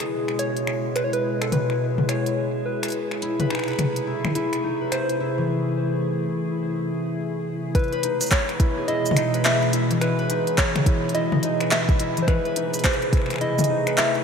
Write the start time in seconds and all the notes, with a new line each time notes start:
Already playing: B2 G#3 D#4 E4 G#4 B4
0.00 finger snap, closed hi-hat
0.28 finger snap
0.39 C#5, closed hi-hat
0.57 closed hi-hat
0.67 finger snap
0.96 B4, finger snap, closed hi-hat
1.04 C#5
1.13 B4, closed hi-hat
1.42 A4, finger snap, closed hi-hat
1.52 B4, closed hi-hat, high tom
1.70 finger snap
1.98 high tom
2.09 C#5, finger snap, closed hi-hat
2.26 closed hi-hat
2.66 B4
2.83 finger snap, closed hi-hat
2.85 closed hi-hat
2.88 closed hi-hat
2.90 closed hi-hat
2.92 closed hi-hat
3.11 finger snap
3.22 C3 A3 E4, closed hi-hat
3.40 B4, closed hi-hat, high tom
3.50 D#4, finger snap
3.55 finger snap
3.59 finger snap
3.64 finger snap
3.68 B4, finger snap, closed hi-hat
3.71 finger snap
3.73 finger snap
3.76 finger snap
3.79 finger snap, closed hi-hat, high tom
3.96 closed hi-hat
4.07 E4
4.25 G#4, finger snap, high tom
4.35 E4, closed hi-hat
4.53 finger snap, closed hi-hat
4.64 D#4
4.81 B4
4.92 E4 C5, finger snap, closed hi-hat
5.09 closed hi-hat
5.20 E4
5.38 E3
7.75 B2 E3 G#3 E4 G#4 B4, kick, closed hi-hat
7.79 closed hi-hat
7.84 closed hi-hat
7.88 closed hi-hat
7.92 B4, closed hi-hat
8.03 D#4, closed hi-hat
8.21 B4, closed hi-hat, shaker
8.23 shaker
8.26 shaker
8.28 C#5, kick, clap, closed hi-hat, shaker
8.49 finger snap, closed hi-hat
8.60 E4, kick, closed hi-hat
8.77 G#4
8.88 E4 D#5, closed hi-hat
9.06 closed hi-hat, shaker
9.11 high tom
9.16 D#4, finger snap, closed hi-hat
9.34 B4, closed hi-hat
9.45 E4 E5, clap, closed hi-hat
9.62 closed hi-hat
9.73 E4, closed hi-hat
9.91 E3, closed hi-hat
10.01 E4 B4, finger snap, closed hi-hat
10.19 B4, closed hi-hat
10.30 D#4, closed hi-hat
10.47 B4, closed hi-hat
10.58 C#5, kick, clap, closed hi-hat
10.76 finger snap, closed hi-hat, high tom
10.86 E4, kick, closed hi-hat
11.04 G#4
11.09 closed hi-hat
11.15 E4 D#5, closed hi-hat
11.32 high tom
11.43 D#4, closed hi-hat
11.61 B4, finger snap, closed hi-hat
11.71 E4 E5, clap, closed hi-hat
11.89 kick, closed hi-hat
12.00 E4, closed hi-hat
12.17 E3, closed hi-hat
12.22 C5
12.28 C3 A3 E4 B4, finger snap, kick, closed hi-hat
12.45 B4, closed hi-hat
12.56 D#4, closed hi-hat
12.74 B4, closed hi-hat, shaker
12.79 closed hi-hat
12.84 C5, kick, clap, closed hi-hat
12.93 closed hi-hat
13.02 closed hi-hat
13.13 E4, kick, closed hi-hat
13.17 finger snap
13.22 finger snap
13.26 finger snap
13.30 G#4, finger snap, closed hi-hat
13.33 finger snap
13.36 finger snap
13.38 E4 D#5, finger snap, closed hi-hat
13.59 closed hi-hat, high tom, shaker
13.64 closed hi-hat
13.69 D#4
13.87 B4, finger snap, closed hi-hat
13.98 E4 E5, clap, closed hi-hat
14.15 closed hi-hat